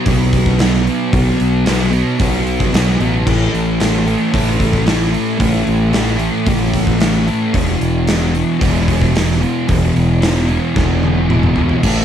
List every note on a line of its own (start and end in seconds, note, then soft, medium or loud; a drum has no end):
0.05 0.88 B1 loud
0.05 0.57 B2 medium
0.05 0.59 F#3 medium
0.05 0.60 B3 medium
0.05 kick loud
0.05 open hi-hat medium
0.33 kick medium
0.33 open hi-hat medium
0.46 kick medium
0.58 1.11 B2 medium
0.58 0.88 F#3 medium
0.58 0.86 B3 medium
0.58 snare loud
0.58 open hi-hat medium
0.74 snare soft
0.87 1.12 F#3 medium
0.87 1.14 B3 medium
0.87 open hi-hat medium
1.12 1.33 B1 loud
1.12 1.65 B2 medium
1.12 1.66 F#3 loud
1.12 1.67 B3 loud
1.12 kick loud
1.12 open hi-hat medium
1.40 2.02 B1 medium
1.40 open hi-hat medium
1.66 2.17 B2 loud
1.66 1.93 F#3 medium
1.66 1.90 B3 loud
1.66 snare loud
1.66 open hi-hat medium
1.91 2.20 F#3 medium
1.91 2.21 B3 medium
1.91 open hi-hat medium
2.19 2.61 B1 loud
2.19 2.71 B2 medium
2.19 2.73 F#3 medium
2.19 2.74 B3 medium
2.19 kick loud
2.19 open hi-hat medium
2.47 open hi-hat medium
2.60 kick medium
2.72 2.97 B1 medium
2.72 3.24 B2 medium
2.72 3.00 F#3 medium
2.72 2.98 B3 medium
2.72 snare loud
2.72 open hi-hat medium
2.90 snare soft
3.00 3.24 A1 medium
3.00 3.26 F#3 medium
3.00 3.25 B3 medium
3.00 open hi-hat medium
3.27 3.47 A1 loud
3.27 3.80 A2 medium
3.27 3.80 E3 medium
3.27 3.81 A3 loud
3.27 kick loud
3.27 crash loud
3.54 4.15 A1 medium
3.54 open hi-hat medium
3.80 4.31 A2 medium
3.80 4.07 E3 loud
3.80 4.05 A3 loud
3.80 snare loud
3.80 open hi-hat medium
4.05 4.33 E3 medium
4.05 4.33 A3 medium
4.05 open hi-hat medium
4.32 5.16 A1 loud
4.32 4.85 A2 medium
4.32 4.87 E3 medium
4.32 4.87 A3 medium
4.32 kick loud
4.32 open hi-hat medium
4.60 kick medium
4.60 open hi-hat medium
4.73 kick medium
4.86 5.37 A2 medium
4.86 5.14 E3 medium
4.86 5.11 A3 medium
4.86 snare loud
4.86 open hi-hat medium
5.02 snare soft
5.12 5.39 E3 medium
5.12 5.39 A3 medium
5.12 open hi-hat medium
5.38 5.61 A1 loud
5.38 5.90 A2 loud
5.38 5.93 E3 loud
5.38 5.92 A3 loud
5.38 kick loud
5.38 open hi-hat medium
5.67 6.29 A1 medium
5.67 open hi-hat medium
5.91 6.46 A2 loud
5.91 6.19 E3 loud
5.91 6.16 A3 loud
5.91 snare loud
5.91 open hi-hat medium
6.17 6.47 E3 medium
6.17 6.48 A3 medium
6.17 open hi-hat medium
6.46 7.29 A1 loud
6.46 6.98 A2 medium
6.46 6.99 E3 medium
6.46 7.00 A3 medium
6.46 kick loud
6.46 open hi-hat medium
6.73 kick medium
6.73 open hi-hat medium
6.87 kick medium
6.99 7.52 A2 medium
6.99 7.30 E3 medium
6.99 7.26 A3 medium
6.99 snare loud
6.99 open hi-hat medium
7.28 7.56 E3 medium
7.28 7.53 A3 medium
7.28 open hi-hat medium
7.54 7.75 E1 loud
7.54 8.08 E2 loud
7.54 8.08 B2 loud
7.54 8.10 E3 loud
7.54 kick loud
7.54 open hi-hat medium
7.81 8.42 E1 medium
7.81 open hi-hat medium
8.07 8.60 E2 loud
8.07 8.35 B2 loud
8.07 8.34 E3 loud
8.07 snare loud
8.07 open hi-hat medium
8.34 8.60 B2 medium
8.34 8.63 E3 medium
8.34 open hi-hat medium
8.60 9.43 E1 loud
8.60 9.14 E2 medium
8.60 9.15 B2 medium
8.60 9.17 E3 medium
8.60 kick loud
8.60 open hi-hat medium
8.88 kick medium
8.88 open hi-hat medium
9.01 kick medium
9.15 9.67 E2 medium
9.15 9.42 B2 medium
9.15 9.40 E3 loud
9.15 snare loud
9.15 open hi-hat medium
9.31 snare soft
9.40 9.68 B2 medium
9.40 9.70 E3 medium
9.40 open hi-hat medium
9.68 9.90 E1 loud
9.68 10.20 E2 loud
9.68 10.21 B2 loud
9.68 10.22 E3 loud
9.68 kick loud
9.68 open hi-hat medium
9.96 10.57 E1 loud
9.96 open hi-hat medium
10.21 10.74 E2 loud
10.21 10.50 B2 loud
10.21 10.47 E3 loud
10.21 snare loud
10.21 open hi-hat medium
10.48 10.75 B2 medium
10.48 10.76 E3 medium
10.48 open hi-hat medium
10.75 11.58 E1 loud
10.75 11.28 E2 medium
10.75 11.28 B2 medium
10.75 11.30 E3 medium
10.75 kick loud
10.75 snare medium
11.03 high tom medium
11.29 11.81 E2 medium
11.29 11.57 B2 medium
11.29 11.55 E3 medium
11.29 mid tom medium
11.43 mid tom medium
11.56 11.82 B2 medium
11.56 11.81 E3 medium
11.56 floor tom loud
11.69 floor tom medium
11.83 12.04 A1 loud
11.83 12.05 A2 loud
11.83 12.05 E3 medium
11.83 12.05 A3 loud
11.83 kick loud
11.83 crash loud